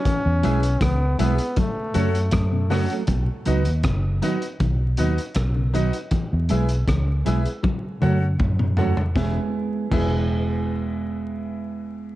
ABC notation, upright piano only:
X:1
M:4/4
L:1/16
Q:1/4=79
K:E
V:1 name="Upright piano"
z2 [EGBe] z3 [EGBe] z3 [FAcf] z3 [FAcf] z | z2 [DFBd] z3 [DFBd] z3 [DFBd] z3 [DFBd] z | z2 [EGBe] z3 [EGBe] z3 [FAcf] z3 [FAcf] z | [EGBe]2 z2 [EGBe]12 |]